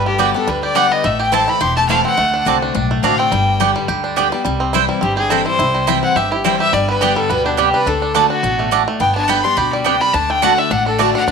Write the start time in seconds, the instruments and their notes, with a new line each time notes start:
Already playing: upright bass G1, steel-string acoustic guitar G2, five-string banjo G3
0.06 five-string banjo B3, fiddle G4
0.18 steel-string acoustic guitar D3 G3 B3 G4, mandolin B3 G4 D5 G5, fiddle F#4, five-string banjo G4
0.34 steel-string acoustic guitar B3 G4, five-string banjo D4, fiddle A4
0.47 upright bass D2, steel-string acoustic guitar D3, five-string banjo G3, fiddle B4
0.63 five-string banjo G4, fiddle D5
0.75 steel-string acoustic guitar D3 G3 B3 G4, mandolin B3 G4 D5 G5, five-string banjo D4, fiddle F#5
0.92 five-string banjo B3, fiddle D#5
1.04 upright bass A1, steel-string acoustic guitar A2, five-string banjo A3, fiddle E5
1.19 five-string banjo G4, fiddle G5
1.32 steel-string acoustic guitar E3 A3 C4 E4, mandolin A3 E4 C5 A5, five-string banjo C4, fiddle A5
1.48 five-string banjo E4, fiddle B5
1.61 upright bass E1, steel-string acoustic guitar E2, five-string banjo G4, fiddle C6
1.76 five-string banjo A3, fiddle A5
1.89 steel-string acoustic guitar E3 A3 C4 E4, mandolin A3 E4 C5 A5, five-string banjo E4, fiddle F5
2.05 five-string banjo C4, fiddle F#5
2.17 upright bass D2, steel-string acoustic guitar D3, five-string banjo A3
2.34 five-string banjo D4
2.45 upright bass C2, steel-string acoustic guitar D3 A3 C4 F#4, five-string banjo C4, mandolin C4 F#4 D5 A5
2.62 five-string banjo D4
2.75 upright bass B1, steel-string acoustic guitar A2, five-string banjo D4
2.91 five-string banjo A3
3.03 upright bass A1, steel-string acoustic guitar D3 A3 C4 F#4, mandolin C4 F#4 D5 A5, five-string banjo D4, fiddle F5
3.18 five-string banjo C4, fiddle G5
3.32 upright bass G1, steel-string acoustic guitar G2, five-string banjo G3
3.60 steel-string acoustic guitar D3 G3 B3 G4, mandolin B3 G4 D5 G5, five-string banjo G4
3.76 five-string banjo G3
3.88 upright bass D2, steel-string acoustic guitar D3, five-string banjo G4
4.04 five-string banjo D4
4.16 steel-string acoustic guitar D3 G3 B3 G4, mandolin B3 G4 D5 G5, five-string banjo G4
4.32 five-string banjo G3, steel-string acoustic guitar B3 G4
4.45 upright bass C2, steel-string acoustic guitar C3, five-string banjo G3
4.60 five-string banjo C4
4.73 steel-string acoustic guitar E3 G3 C4 E4, mandolin C4 E4 C5 G5, five-string banjo E4
4.89 five-string banjo G3
5.01 upright bass G1, steel-string acoustic guitar G2, five-string banjo C4, fiddle G4
5.17 five-string banjo G4, fiddle G#4
5.30 steel-string acoustic guitar E3 G3 C4 E4, five-string banjo G3, mandolin C4 E4 C5 G5, fiddle A4
5.46 five-string banjo E4, fiddle C5
5.59 upright bass C2, steel-string acoustic guitar C3, five-string banjo E4
5.74 five-string banjo G3
5.87 steel-string acoustic guitar E3 G3 C4 E4, mandolin C4 E4 C5 G5, five-string banjo E4
6.03 five-string banjo C4, fiddle F#5
6.15 upright bass G1, steel-string acoustic guitar G2, five-string banjo G4, fiddle E5
6.32 five-string banjo E4, fiddle G4
6.44 steel-string acoustic guitar E3 G3 C4 E4, five-string banjo G3, mandolin C4 E4 C5 G5, fiddle C5
6.60 five-string banjo G4, fiddle E5
6.73 upright bass G1, steel-string acoustic guitar G2, five-string banjo G3, fiddle D5
6.89 five-string banjo B3, fiddle B4
7.01 steel-string acoustic guitar D3 G3 B3 G4, mandolin B3 G4 D5 G5, five-string banjo D4, fiddle G4
7.16 five-string banjo G3, fiddle A4
7.30 upright bass D2, steel-string acoustic guitar B2, five-string banjo B3, fiddle B4
7.46 fiddle D4, five-string banjo G4
7.57 steel-string acoustic guitar C3, five-string banjo G3, mandolin B3 G4 D5 G5, fiddle G4
7.74 five-string banjo D4, fiddle B4
7.86 upright bass D2, steel-string acoustic guitar D3, five-string banjo D4, fiddle A4
8.02 five-string banjo D4
8.15 steel-string acoustic guitar D3 A3 D4 F#4, mandolin A3 F#4 D5 A5, five-string banjo D4
8.30 five-string banjo D4, fiddle F#4
8.43 upright bass A1, steel-string acoustic guitar B2, five-string banjo D4
8.59 five-string banjo A3
8.71 steel-string acoustic guitar A2, mandolin A3 F#4 D5 A5, five-string banjo D4
8.88 five-string banjo A3
9.00 upright bass G1, steel-string acoustic guitar G2, five-string banjo B3, fiddle G5
9.15 five-string banjo D4, fiddle A5
9.28 steel-string acoustic guitar D3 G3 B3 G4, mandolin B3 G4 D5 G5, five-string banjo G4, fiddle B5
9.44 steel-string acoustic guitar B3 G4, five-string banjo D4, fiddle C6
9.57 upright bass D2, steel-string acoustic guitar B2, five-string banjo G4, fiddle B5
9.73 five-string banjo G3, fiddle D5
9.84 steel-string acoustic guitar C3, mandolin B3 G4 D5 G5, five-string banjo D4, fiddle G5
10.01 five-string banjo G3, fiddle B5
10.14 upright bass D2, steel-string acoustic guitar D3, five-string banjo D4, fiddle A5
10.30 five-string banjo A3, fiddle G5
10.42 steel-string acoustic guitar D3 A3 D4 F#4, mandolin A3 F#4 D5 A5, five-string banjo D4, fiddle F#5
10.58 five-string banjo D4, fiddle E5
10.71 upright bass A1, steel-string acoustic guitar A2, five-string banjo D4, fiddle F#5
10.86 five-string banjo D4, fiddle A4
10.99 steel-string acoustic guitar D3 A3 D4 F#4, mandolin A3 F#4 D5 A5, five-string banjo A3, fiddle D5
11.15 five-string banjo D4, steel-string acoustic guitar D4 F#4, fiddle F#5
11.28 upright bass D2, steel-string acoustic guitar D3, five-string banjo D4, fiddle F#5